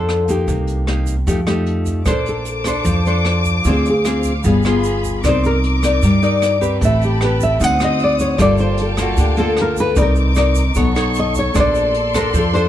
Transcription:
Already playing: F2 F3 D4 A4 C5
0.09 cross-stick, closed hi-hat
0.28 A#3 D#4 G4, kick, closed hi-hat, shaker
0.48 C2 C3, kick, closed hi-hat, shaker
0.67 closed hi-hat, shaker
0.87 A#3 D#4 G4, cross-stick, closed hi-hat
1.07 kick, closed hi-hat, shaker
1.27 F2 F3 A3 D#4 G4, kick, closed hi-hat, shaker
1.47 A3 D#4 G4, cross-stick, closed hi-hat, shaker
1.66 closed hi-hat
1.86 kick, closed hi-hat, shaker
2.05 A#1 A#3 D4 A4 C5 A5 D6, kick, cross-stick, closed hi-hat, shaker
2.11 C5
2.26 A4, closed hi-hat, shaker
2.45 closed hi-hat, shaker
2.64 D4 A4 C5, kick, cross-stick, closed hi-hat, shaker
2.85 F2 F3, kick, closed hi-hat, shaker
3.05 D4 A4 C5, closed hi-hat, shaker
3.25 cross-stick, closed hi-hat
3.45 kick, closed hi-hat, shaker
3.64 D2 D3 C4 F4 G#4 F5, kick, closed hi-hat, shaker
3.69 C5
3.85 closed hi-hat, shaker
3.90 G#4
4.05 C4 F4 G#4, cross-stick, closed hi-hat, shaker
4.23 kick, closed hi-hat, shaker
4.44 G1 G3 B3 F4 G#4 B5, kick, closed hi-hat, shaker
4.63 B3 F4 G#4, cross-stick, closed hi-hat, shaker
4.84 closed hi-hat, shaker
5.04 kick, closed hi-hat, shaker
5.21 C2 C4 A#4 D6, kick, cross-stick, closed hi-hat, shaker
5.25 D#4 C5 D5
5.44 A#4, closed hi-hat, shaker
5.64 closed hi-hat
5.83 D#4 A#4 D5, kick, cross-stick, closed hi-hat, shaker
6.02 G2 G3, kick, closed hi-hat, shaker
6.22 D#4 A#4 D5, closed hi-hat, shaker
6.42 cross-stick, closed hi-hat, shaker
6.61 C4 G4 B4, kick, closed hi-hat, shaker
6.80 A1 A3 G5 A5 B5, kick, closed hi-hat, shaker
6.85 E5
7.02 G4, closed hi-hat, shaker
7.21 C4 G4 B4, cross-stick, closed hi-hat
7.40 E5, kick, closed hi-hat, shaker
7.59 D2 D3 C4 D#4 F#4 C5 F#5 D#6, kick, closed hi-hat, shaker
7.64 F#5
7.80 C4 D#4 F#4, cross-stick, closed hi-hat, shaker
7.84 D#5
7.99 closed hi-hat
8.04 D5
8.19 C#5, kick, closed hi-hat, shaker
8.38 G1 G3 A#3 F4 A4 D5 F5 G5 A5, kick, cross-stick, closed hi-hat, shaker
8.58 C5, closed hi-hat, shaker
8.77 closed hi-hat
8.81 A4
8.97 A#3 F4 F#4 A4, kick, cross-stick, closed hi-hat, shaker
9.17 D2 D3 G4, kick, closed hi-hat, shaker
9.37 A#3 F4 A4, closed hi-hat, shaker
9.57 cross-stick, closed hi-hat
9.62 A#4
9.77 B4, kick, closed hi-hat, shaker
9.96 C2 C4 D#4 A#4 D5 D6, kick, closed hi-hat, shaker
10.02 A#4
10.16 closed hi-hat, shaker
10.35 D#4 A#4 D5, cross-stick, closed hi-hat, shaker
10.55 kick, closed hi-hat, shaker
10.75 B1 B3 D#4 A4 C#5 C#6, kick, closed hi-hat, shaker
10.96 D#4 A4 C#5, cross-stick, closed hi-hat, shaker
11.14 closed hi-hat, shaker
11.19 D#5
11.35 kick, closed hi-hat, shaker
11.39 C#5
11.54 A#1 A#3 D4 A4 C5 D5 C6, kick, cross-stick, closed hi-hat, shaker
11.60 D5
11.75 closed hi-hat, shaker
11.94 closed hi-hat
12.14 D4 A4 A#4 C5, kick, cross-stick, closed hi-hat, shaker
12.34 F2 F3, kick, closed hi-hat, shaker
12.38 A4
12.53 D4 A4 C5, closed hi-hat, shaker

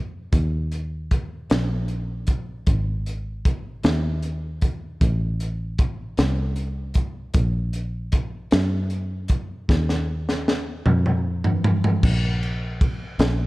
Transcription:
Already playing: F2
0.32 D#2, kick, closed hi-hat
0.71 closed hi-hat
1.11 kick, closed hi-hat
1.49 A#1, snare, closed hi-hat
1.88 closed hi-hat
2.27 kick, closed hi-hat
2.67 G#1, kick, closed hi-hat
3.06 closed hi-hat
3.45 kick, closed hi-hat
3.83 D#2, snare, closed hi-hat
4.22 closed hi-hat
4.61 kick, closed hi-hat
5.01 A1, kick, closed hi-hat
5.40 closed hi-hat
5.79 kick, closed hi-hat
6.17 C2, snare, closed hi-hat
6.56 closed hi-hat
6.94 kick, closed hi-hat
7.34 A#1, kick, closed hi-hat
7.73 closed hi-hat
8.12 kick, closed hi-hat
8.51 F#2, snare, closed hi-hat
8.90 closed hi-hat
9.28 kick, closed hi-hat
9.69 D#2, kick, snare
9.89 snare
10.29 snare
10.48 snare
10.85 F2, mid tom
11.06 mid tom
11.44 floor tom
11.64 floor tom
11.84 floor tom
12.03 A#1, kick, crash
12.43 ride
12.81 kick, ride
13.19 A#1, snare, ride

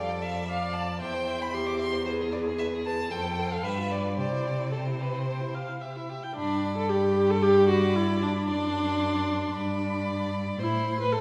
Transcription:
Already playing: F2 A4 D5 F5
0.10 D5
0.22 E5 F5
0.36 D5
0.49 D5 F5
0.63 D5
0.73 F5 A5
0.88 D5
1.00 E2 C5 E5 G5
1.14 C5
1.27 E5
1.39 C5 B5
1.53 G4 E5 C6
1.67 C5 D6
1.79 E5 C6
1.93 C5
2.06 G#4 B4 C5
2.21 G#4
2.32 B4 D5
2.47 G#4
2.58 B4 E5
2.73 G#4
2.86 B4 A5
3.00 G#4
3.10 F2 A4 C5 G5
3.26 A4
3.39 C5
3.51 A4 F5
3.62 G2 G4 B4 E5
3.78 F4
3.91 G4 D5
4.04 F4
4.17 C3 G4 C5 D5
4.32 E4
4.46 G4
4.59 E4
4.71 G4 A4 C5
4.87 E4
4.99 G4 B4
5.13 E4
5.26 G4 C5
5.41 E4
5.54 G4 F5
5.69 E4
5.81 G4 E5
5.96 E4
6.09 G4
6.23 E4 G5
6.35 G2 D4 D5 B5
6.77 A4
6.88 G4 D5 B5
7.30 A4
7.42 G4 D5 B5
7.69 F#4
7.96 E4
8.22 D4
8.35 D4
8.47 F#2 D5 C6
9.52 G2 D5 B5
10.58 A2 E4 C5 C6
11.00 B4
11.11 A4 C5 C6

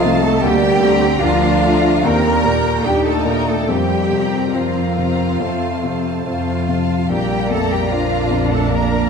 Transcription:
Already playing: C2 C3 F3 A3 D#4 F4 D#5 F5
0.04 C3 A5
0.23 A3 A4 A5
0.43 D2 G3 A#3 G4 D5 G5
0.80 D3 C4 A#5
1.20 D2 F3 A#3 D4 F4 D5 F5
1.62 D3 A3 A#5
2.04 D#2 G3 A#3 C4 A#4 D5 G5 A#5
2.45 A#2 A#3 G5
2.84 D#2 G3 D4 D#4 G4 D5 G5
3.04 A3 A4 A5
3.25 A#2 A3 A#3 A#4 G5 A#5
3.47 A3 A4 A5
3.68 F2 G3 A#3 C4 G4 C5 G5
4.11 C3 A#5
4.54 F2 F3 A#3 C4 F4 C5 F5
4.97 C3 A#5
5.39 F2 A3 C5 A5
5.83 C3 A5
6.25 F2 F3 A3 C4 F4 C5 F5
6.68 C3 A5
7.10 A#1 G3 A#3 G4 D5 G5 A#5
7.50 F2 A3 A4 A5
7.70 G3 G4 G5
7.90 F3 A#3 D4 F4 D5 F5
8.30 F2
8.50 A3 A4 A5
8.70 A#1 A#3 A#4 D5 A#5

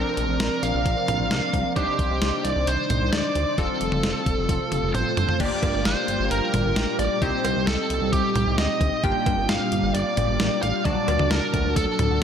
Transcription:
Already playing: C3 F3 A#3 C4 D4 A#4 D5
0.17 A#1, closed hi-hat
0.29 A#1
0.40 A#1, snare, closed hi-hat
0.63 A#1 F5, closed hi-hat
0.74 A#1
0.86 A#1, kick, closed hi-hat
1.08 A#1, closed hi-hat, mid tom
1.20 A#1
1.31 C2, snare, closed hi-hat
1.53 C2, kick, closed hi-hat
1.76 C2 D#3 G3 D4 D#4 G4 C5, kick, closed hi-hat
1.99 C2, kick, closed hi-hat
2.11 C2
2.22 C2, snare, closed hi-hat
2.44 C2 D5, closed hi-hat
2.56 C2
2.67 C2 C5, closed hi-hat
2.90 C2, closed hi-hat, mid tom
3.01 C2
3.13 D2 D5, snare, closed hi-hat
3.35 D2, closed hi-hat
3.58 F1 C3 F3 A3 C4 F4 A4, kick, closed hi-hat
3.81 F1, closed hi-hat
3.92 F1, mid tom
4.03 F1, snare, closed hi-hat
4.26 F1, kick, closed hi-hat
4.38 F1
4.49 F1, kick, closed hi-hat, high tom
4.72 F1, closed hi-hat, mid tom
4.83 F1
4.95 G1 C5, closed hi-hat, mid tom
5.17 G1, closed hi-hat, floor tom
5.29 floor tom
5.40 G1 A#2 G3 A#3 D4 F4 G4 D5, kick, closed hi-hat, crash
5.63 G1, kick, closed hi-hat, cowbell
5.74 G1
5.85 G1 C5, snare, closed hi-hat
6.08 G1, closed hi-hat
6.20 G1
6.31 G1 A#4, closed hi-hat
6.54 G1, closed hi-hat, mid tom
6.65 G1
6.76 A1, snare, closed hi-hat
6.99 A1 D5, closed hi-hat
7.22 C2 C4 D#4 G4 C5, kick, closed hi-hat
7.44 C2, closed hi-hat, cowbell
7.56 C2
7.67 C2 A4, snare, closed hi-hat
7.90 C2, closed hi-hat
8.01 C2
8.13 C2 G4, kick, closed hi-hat
8.35 C2, closed hi-hat, mid tom
8.47 C2
8.58 D2 D#5, snare, closed hi-hat
8.81 D2, kick, closed hi-hat
9.04 G1 A#3 D4 F4 G4 G5, kick, closed hi-hat
9.26 G1, kick, closed hi-hat, cowbell
9.38 G1
9.49 G1 F5, snare, closed hi-hat
9.72 G1, closed hi-hat
9.83 G1
9.94 G1 D5, closed hi-hat
10.17 G1, closed hi-hat, mid tom
10.29 G1
10.40 A1, snare, closed hi-hat
10.63 A1 F5, closed hi-hat
10.85 D2 F#3 D4 F#4 D5 A5, kick, closed hi-hat
11.08 D2, closed hi-hat, cowbell
11.19 D2, mid tom
11.31 D2 A#4, snare, closed hi-hat
11.54 D2, kick, closed hi-hat
11.65 D2
11.76 D2 A4, kick, closed hi-hat
11.99 D2, closed hi-hat, mid tom
12.10 D2

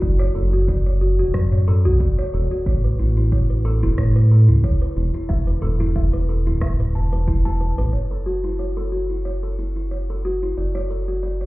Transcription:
0.02 F#1 D5, kick, shaker
0.19 C#5, closed hi-hat, shaker
0.35 F#1 A4, shaker
0.53 F#4, closed hi-hat, shaker
0.68 D5, kick, shaker
0.86 C#5, closed hi-hat
1.01 F#4, shaker
1.19 E1 F#4, closed hi-hat, shaker
1.34 F#2 D5, kick, cross-stick, shaker
1.52 C#5, mid tom, shaker
1.68 A4, shaker
1.85 B1 F#4, closed hi-hat, shaker
2.00 D5, kick, shaker
2.18 C#5, closed hi-hat, shaker
2.33 E1 A4, shaker
2.51 F#4, closed hi-hat, shaker
2.66 A1 C#5, kick, shaker
2.84 B4, closed hi-hat, shaker
2.99 A1 E4, shaker
3.17 E4, closed hi-hat, shaker
3.32 C#5, kick, shaker
3.50 B4, closed hi-hat
3.65 A4, shaker
3.83 E1 E4, closed hi-hat, shaker
3.98 A2 C#5, kick, cross-stick, shaker
4.16 B4, shaker
4.31 A4, shaker
4.48 C#2 E4, closed hi-hat, shaker
4.64 C#5, kick, shaker
4.81 B4, closed hi-hat, shaker
4.96 E1 E4, shaker
5.14 E4, closed hi-hat, shaker
5.29 E1 E5, kick, shaker
5.47 B4, closed hi-hat, shaker
5.62 E1 A4, mid tom, shaker
5.80 E4, closed hi-hat, shaker
5.96 E5, kick, shaker
6.13 B4, closed hi-hat, shaker
6.29 A4, shaker
6.46 D1 E4, closed hi-hat, shaker
6.61 E5, kick, cross-stick, shaker
6.79 B4, closed hi-hat, mid tom, shaker
6.94 E1 A5, shaker
7.12 B4, closed hi-hat, shaker
7.28 E4, kick, shaker
7.45 A5, closed hi-hat, shaker
7.60 B4, shaker
7.78 A1 B4, closed hi-hat, shaker
7.93 F#1 C#5, shaker
8.11 A4, shaker
8.26 F#4, shaker
8.44 E4, shaker
8.59 C#5, shaker
8.77 A4
8.92 F#4, shaker
9.10 E4, shaker
9.25 C#5, shaker
9.43 A4, shaker
9.59 E4, shaker
9.76 E4, shaker
9.91 C#5, shaker
10.10 A4, shaker
10.25 F#4, shaker
10.43 E4, shaker
10.57 F#1 D5, shaker
10.75 C#5, shaker
10.90 A4, shaker
11.08 F#4, shaker
11.23 D5, shaker
11.41 C#5

